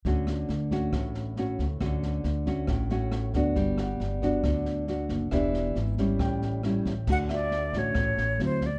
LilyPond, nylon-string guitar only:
\new Staff \with { instrumentName = "Nylon-string guitar" } { \time 4/4 \key d \major \tempo 4 = 137 << { <a cis' fis'>4 r8 <a cis' fis'>4. <a cis' fis'>8 r8 | <a cis' fis'>4 r8 <a cis' fis'>4 <a cis' fis'>4 <b d' fis'>8~ | <b d' fis'>4. <b d' fis'>4. <b d' fis'>4 | <b d' g'>4 r8 <g cis' e'>4. <g cis' e'>8 r8 |
<a fis'>4. <a cis' fis'>4. <fis c' e'>8 r8 | } \\ { d2 a,2 | d2 a,2 | g2 d2 | e2 a,2 |
d2 a,4 r4 | } >> }